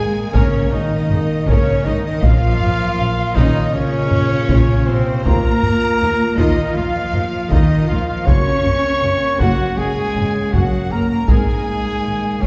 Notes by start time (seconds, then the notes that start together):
Already playing: G#3 A#3 G#4 A#4 G#5
0.34 G#1 C#3 A#3 C#4 A#4 C#5, taiko
0.72 G#1 D#3 G#3 D#4 D#5
1.10 G#1 A#3 G#4, taiko low-mid
1.47 G#1 C#3 A#3 C#4 A#4 C#5, taiko
1.84 G#1 D#3 G#3 D#4 D#5
2.03 D#3 D#4 D#5
2.21 A#1 F3 A#3 C#4 F4 F5, taiko
2.61 taiko low-mid
2.98 A#1 A#3 C#4
3.34 A#1 D#3 C#4 D#4 F4 D#5, taiko
3.73 A#1 C#3 F3 A#3 C#4 C#5
4.11 A#1 A#3 C#4, taiko low-mid
4.49 A#1 C#4 F4, taiko
4.86 A#1 C3 F3 A#3 C4 C5
5.24 D#2 A#3 F4 A#4 A#5, taiko
5.63 taiko low-mid
6.01 D#2 F3 D#4
6.37 D#2 D#3 A#3 D#4 F4 D#5, taiko
6.74 D#2 D#3 F3 A#3 F4 F5
7.12 D#2 F3 D#4, taiko low-mid
7.50 D#2 D#3 A#3 D#4 F4 D#5, taiko
7.88 D#2 D#3 F3 A#3 F4 F5
8.07 F3 F4 F5
8.26 F#1 A#3 C#4 F#4 C#5 C#6, taiko
8.65 taiko low-mid
9.03 F#1 F#3 C#4
9.39 F#1 F#3 A#3 F#4 F#5, taiko
9.77 F#1 C#3 G#3 A#3 G#4 G#5
10.15 F#1 F#3 C#4, taiko low-mid
10.52 F#1 F#3 A#3 F#4 F#5, taiko
10.91 F#1 C#3 A#3 A#4 A#5
11.09 A#3 A#4 A#5
11.28 G#1 G#3 A#3 C4 D#4 G#4 A#4 G#5, taiko
12.04 G#1 A#3 G#4
12.42 G#1 C#3 A#3 C#4 A#4 C#5, taiko